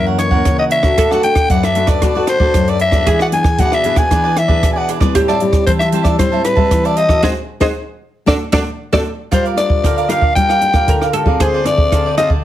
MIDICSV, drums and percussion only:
0, 0, Header, 1, 2, 480
1, 0, Start_track
1, 0, Tempo, 521286
1, 901, Time_signature, 4, 2, 24, 8
1, 11456, End_track
2, 0, Start_track
2, 0, Title_t, "Drums"
2, 171, Note_on_c, 9, 37, 72
2, 171, Note_on_c, 9, 42, 52
2, 263, Note_off_c, 9, 37, 0
2, 263, Note_off_c, 9, 42, 0
2, 286, Note_on_c, 9, 36, 70
2, 378, Note_off_c, 9, 36, 0
2, 417, Note_on_c, 9, 37, 66
2, 417, Note_on_c, 9, 42, 64
2, 419, Note_on_c, 9, 36, 85
2, 509, Note_off_c, 9, 37, 0
2, 509, Note_off_c, 9, 42, 0
2, 511, Note_off_c, 9, 36, 0
2, 650, Note_on_c, 9, 42, 54
2, 742, Note_off_c, 9, 42, 0
2, 763, Note_on_c, 9, 37, 76
2, 767, Note_on_c, 9, 36, 66
2, 855, Note_off_c, 9, 37, 0
2, 859, Note_off_c, 9, 36, 0
2, 899, Note_on_c, 9, 37, 68
2, 899, Note_on_c, 9, 42, 73
2, 900, Note_on_c, 9, 36, 70
2, 992, Note_off_c, 9, 36, 0
2, 992, Note_off_c, 9, 37, 0
2, 992, Note_off_c, 9, 42, 0
2, 1025, Note_on_c, 9, 37, 60
2, 1117, Note_off_c, 9, 37, 0
2, 1133, Note_on_c, 9, 42, 55
2, 1225, Note_off_c, 9, 42, 0
2, 1247, Note_on_c, 9, 37, 76
2, 1247, Note_on_c, 9, 42, 36
2, 1248, Note_on_c, 9, 36, 74
2, 1339, Note_off_c, 9, 37, 0
2, 1339, Note_off_c, 9, 42, 0
2, 1340, Note_off_c, 9, 36, 0
2, 1378, Note_on_c, 9, 42, 62
2, 1380, Note_on_c, 9, 36, 83
2, 1470, Note_off_c, 9, 42, 0
2, 1472, Note_off_c, 9, 36, 0
2, 1503, Note_on_c, 9, 37, 68
2, 1503, Note_on_c, 9, 42, 28
2, 1595, Note_off_c, 9, 37, 0
2, 1595, Note_off_c, 9, 42, 0
2, 1611, Note_on_c, 9, 42, 49
2, 1703, Note_off_c, 9, 42, 0
2, 1723, Note_on_c, 9, 37, 69
2, 1723, Note_on_c, 9, 42, 32
2, 1727, Note_on_c, 9, 36, 66
2, 1815, Note_off_c, 9, 37, 0
2, 1815, Note_off_c, 9, 42, 0
2, 1819, Note_off_c, 9, 36, 0
2, 1858, Note_on_c, 9, 37, 68
2, 1858, Note_on_c, 9, 42, 67
2, 1860, Note_on_c, 9, 36, 67
2, 1950, Note_off_c, 9, 37, 0
2, 1950, Note_off_c, 9, 42, 0
2, 1952, Note_off_c, 9, 36, 0
2, 2092, Note_on_c, 9, 37, 77
2, 2092, Note_on_c, 9, 42, 52
2, 2184, Note_off_c, 9, 37, 0
2, 2184, Note_off_c, 9, 42, 0
2, 2208, Note_on_c, 9, 36, 69
2, 2300, Note_off_c, 9, 36, 0
2, 2339, Note_on_c, 9, 37, 64
2, 2339, Note_on_c, 9, 42, 59
2, 2341, Note_on_c, 9, 36, 82
2, 2431, Note_off_c, 9, 37, 0
2, 2431, Note_off_c, 9, 42, 0
2, 2433, Note_off_c, 9, 36, 0
2, 2463, Note_on_c, 9, 42, 29
2, 2555, Note_off_c, 9, 42, 0
2, 2573, Note_on_c, 9, 42, 47
2, 2665, Note_off_c, 9, 42, 0
2, 2688, Note_on_c, 9, 37, 69
2, 2689, Note_on_c, 9, 36, 69
2, 2780, Note_off_c, 9, 37, 0
2, 2781, Note_off_c, 9, 36, 0
2, 2822, Note_on_c, 9, 36, 66
2, 2822, Note_on_c, 9, 37, 69
2, 2822, Note_on_c, 9, 42, 65
2, 2914, Note_off_c, 9, 36, 0
2, 2914, Note_off_c, 9, 37, 0
2, 2914, Note_off_c, 9, 42, 0
2, 2944, Note_on_c, 9, 37, 60
2, 3036, Note_off_c, 9, 37, 0
2, 3058, Note_on_c, 9, 42, 48
2, 3150, Note_off_c, 9, 42, 0
2, 3170, Note_on_c, 9, 36, 79
2, 3170, Note_on_c, 9, 37, 70
2, 3262, Note_off_c, 9, 36, 0
2, 3262, Note_off_c, 9, 37, 0
2, 3300, Note_on_c, 9, 42, 61
2, 3302, Note_on_c, 9, 36, 82
2, 3392, Note_off_c, 9, 42, 0
2, 3394, Note_off_c, 9, 36, 0
2, 3425, Note_on_c, 9, 37, 67
2, 3517, Note_off_c, 9, 37, 0
2, 3534, Note_on_c, 9, 42, 48
2, 3626, Note_off_c, 9, 42, 0
2, 3648, Note_on_c, 9, 37, 73
2, 3648, Note_on_c, 9, 42, 33
2, 3650, Note_on_c, 9, 36, 72
2, 3740, Note_off_c, 9, 37, 0
2, 3740, Note_off_c, 9, 42, 0
2, 3742, Note_off_c, 9, 36, 0
2, 3783, Note_on_c, 9, 36, 65
2, 3784, Note_on_c, 9, 37, 64
2, 3784, Note_on_c, 9, 42, 58
2, 3875, Note_off_c, 9, 36, 0
2, 3876, Note_off_c, 9, 37, 0
2, 3876, Note_off_c, 9, 42, 0
2, 4019, Note_on_c, 9, 37, 69
2, 4019, Note_on_c, 9, 42, 50
2, 4111, Note_off_c, 9, 37, 0
2, 4111, Note_off_c, 9, 42, 0
2, 4131, Note_on_c, 9, 36, 70
2, 4223, Note_off_c, 9, 36, 0
2, 4263, Note_on_c, 9, 36, 82
2, 4263, Note_on_c, 9, 37, 64
2, 4263, Note_on_c, 9, 42, 66
2, 4355, Note_off_c, 9, 36, 0
2, 4355, Note_off_c, 9, 37, 0
2, 4355, Note_off_c, 9, 42, 0
2, 4498, Note_on_c, 9, 42, 50
2, 4590, Note_off_c, 9, 42, 0
2, 4610, Note_on_c, 9, 36, 73
2, 4610, Note_on_c, 9, 37, 76
2, 4702, Note_off_c, 9, 36, 0
2, 4702, Note_off_c, 9, 37, 0
2, 4742, Note_on_c, 9, 36, 63
2, 4742, Note_on_c, 9, 37, 65
2, 4742, Note_on_c, 9, 42, 73
2, 4834, Note_off_c, 9, 36, 0
2, 4834, Note_off_c, 9, 37, 0
2, 4834, Note_off_c, 9, 42, 0
2, 4865, Note_on_c, 9, 37, 57
2, 4957, Note_off_c, 9, 37, 0
2, 4974, Note_on_c, 9, 42, 49
2, 5066, Note_off_c, 9, 42, 0
2, 5089, Note_on_c, 9, 36, 82
2, 5090, Note_on_c, 9, 37, 68
2, 5090, Note_on_c, 9, 42, 34
2, 5181, Note_off_c, 9, 36, 0
2, 5182, Note_off_c, 9, 37, 0
2, 5182, Note_off_c, 9, 42, 0
2, 5221, Note_on_c, 9, 36, 87
2, 5221, Note_on_c, 9, 42, 71
2, 5313, Note_off_c, 9, 36, 0
2, 5313, Note_off_c, 9, 42, 0
2, 5344, Note_on_c, 9, 37, 67
2, 5344, Note_on_c, 9, 42, 33
2, 5436, Note_off_c, 9, 37, 0
2, 5436, Note_off_c, 9, 42, 0
2, 5454, Note_on_c, 9, 42, 55
2, 5546, Note_off_c, 9, 42, 0
2, 5567, Note_on_c, 9, 36, 69
2, 5568, Note_on_c, 9, 37, 67
2, 5568, Note_on_c, 9, 42, 34
2, 5659, Note_off_c, 9, 36, 0
2, 5660, Note_off_c, 9, 37, 0
2, 5660, Note_off_c, 9, 42, 0
2, 5700, Note_on_c, 9, 36, 68
2, 5702, Note_on_c, 9, 37, 74
2, 5702, Note_on_c, 9, 42, 68
2, 5792, Note_off_c, 9, 36, 0
2, 5794, Note_off_c, 9, 37, 0
2, 5794, Note_off_c, 9, 42, 0
2, 5934, Note_on_c, 9, 37, 65
2, 5934, Note_on_c, 9, 42, 54
2, 6026, Note_off_c, 9, 37, 0
2, 6026, Note_off_c, 9, 42, 0
2, 6047, Note_on_c, 9, 36, 73
2, 6139, Note_off_c, 9, 36, 0
2, 6179, Note_on_c, 9, 36, 87
2, 6179, Note_on_c, 9, 37, 65
2, 6179, Note_on_c, 9, 42, 65
2, 6271, Note_off_c, 9, 36, 0
2, 6271, Note_off_c, 9, 37, 0
2, 6271, Note_off_c, 9, 42, 0
2, 6306, Note_on_c, 9, 42, 29
2, 6398, Note_off_c, 9, 42, 0
2, 6413, Note_on_c, 9, 42, 56
2, 6505, Note_off_c, 9, 42, 0
2, 6527, Note_on_c, 9, 36, 73
2, 6529, Note_on_c, 9, 37, 72
2, 6619, Note_off_c, 9, 36, 0
2, 6621, Note_off_c, 9, 37, 0
2, 6659, Note_on_c, 9, 36, 83
2, 6661, Note_on_c, 9, 38, 78
2, 6751, Note_off_c, 9, 36, 0
2, 6753, Note_off_c, 9, 38, 0
2, 7005, Note_on_c, 9, 38, 82
2, 7006, Note_on_c, 9, 36, 86
2, 7097, Note_off_c, 9, 38, 0
2, 7098, Note_off_c, 9, 36, 0
2, 7619, Note_on_c, 9, 36, 76
2, 7621, Note_on_c, 9, 38, 68
2, 7711, Note_off_c, 9, 36, 0
2, 7713, Note_off_c, 9, 38, 0
2, 7854, Note_on_c, 9, 36, 74
2, 7856, Note_on_c, 9, 38, 81
2, 7946, Note_off_c, 9, 36, 0
2, 7948, Note_off_c, 9, 38, 0
2, 8224, Note_on_c, 9, 36, 71
2, 8226, Note_on_c, 9, 38, 66
2, 8317, Note_off_c, 9, 36, 0
2, 8318, Note_off_c, 9, 38, 0
2, 8581, Note_on_c, 9, 36, 67
2, 8584, Note_on_c, 9, 37, 68
2, 8584, Note_on_c, 9, 42, 71
2, 8673, Note_off_c, 9, 36, 0
2, 8676, Note_off_c, 9, 37, 0
2, 8676, Note_off_c, 9, 42, 0
2, 8706, Note_on_c, 9, 42, 28
2, 8798, Note_off_c, 9, 42, 0
2, 8817, Note_on_c, 9, 37, 71
2, 8817, Note_on_c, 9, 42, 59
2, 8909, Note_off_c, 9, 37, 0
2, 8909, Note_off_c, 9, 42, 0
2, 8929, Note_on_c, 9, 36, 74
2, 9021, Note_off_c, 9, 36, 0
2, 9061, Note_on_c, 9, 36, 83
2, 9064, Note_on_c, 9, 37, 61
2, 9064, Note_on_c, 9, 42, 57
2, 9153, Note_off_c, 9, 36, 0
2, 9156, Note_off_c, 9, 37, 0
2, 9156, Note_off_c, 9, 42, 0
2, 9186, Note_on_c, 9, 42, 29
2, 9278, Note_off_c, 9, 42, 0
2, 9295, Note_on_c, 9, 37, 70
2, 9295, Note_on_c, 9, 42, 52
2, 9387, Note_off_c, 9, 37, 0
2, 9387, Note_off_c, 9, 42, 0
2, 9408, Note_on_c, 9, 36, 71
2, 9500, Note_off_c, 9, 36, 0
2, 9540, Note_on_c, 9, 36, 70
2, 9540, Note_on_c, 9, 42, 65
2, 9632, Note_off_c, 9, 36, 0
2, 9632, Note_off_c, 9, 42, 0
2, 9662, Note_on_c, 9, 37, 69
2, 9754, Note_off_c, 9, 37, 0
2, 9773, Note_on_c, 9, 42, 52
2, 9865, Note_off_c, 9, 42, 0
2, 9885, Note_on_c, 9, 37, 73
2, 9887, Note_on_c, 9, 36, 74
2, 9977, Note_off_c, 9, 37, 0
2, 9979, Note_off_c, 9, 36, 0
2, 10017, Note_on_c, 9, 42, 70
2, 10018, Note_on_c, 9, 36, 87
2, 10109, Note_off_c, 9, 42, 0
2, 10110, Note_off_c, 9, 36, 0
2, 10142, Note_on_c, 9, 37, 62
2, 10234, Note_off_c, 9, 37, 0
2, 10251, Note_on_c, 9, 42, 54
2, 10344, Note_off_c, 9, 42, 0
2, 10366, Note_on_c, 9, 36, 68
2, 10458, Note_off_c, 9, 36, 0
2, 10498, Note_on_c, 9, 36, 70
2, 10498, Note_on_c, 9, 37, 71
2, 10498, Note_on_c, 9, 42, 65
2, 10590, Note_off_c, 9, 36, 0
2, 10590, Note_off_c, 9, 37, 0
2, 10590, Note_off_c, 9, 42, 0
2, 10732, Note_on_c, 9, 37, 65
2, 10732, Note_on_c, 9, 42, 53
2, 10824, Note_off_c, 9, 37, 0
2, 10824, Note_off_c, 9, 42, 0
2, 10846, Note_on_c, 9, 36, 79
2, 10939, Note_off_c, 9, 36, 0
2, 10978, Note_on_c, 9, 36, 86
2, 10978, Note_on_c, 9, 37, 64
2, 10978, Note_on_c, 9, 42, 61
2, 11070, Note_off_c, 9, 36, 0
2, 11070, Note_off_c, 9, 37, 0
2, 11070, Note_off_c, 9, 42, 0
2, 11211, Note_on_c, 9, 37, 60
2, 11211, Note_on_c, 9, 42, 48
2, 11303, Note_off_c, 9, 37, 0
2, 11303, Note_off_c, 9, 42, 0
2, 11325, Note_on_c, 9, 36, 71
2, 11417, Note_off_c, 9, 36, 0
2, 11456, End_track
0, 0, End_of_file